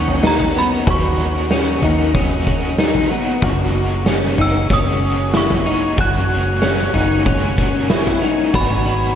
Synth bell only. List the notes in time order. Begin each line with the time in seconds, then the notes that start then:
Already playing: C#6
0.27 A#5
0.59 B5
0.90 C#6
4.41 E6
4.73 D#6
5.37 C#6
6.01 F#6
8.55 B5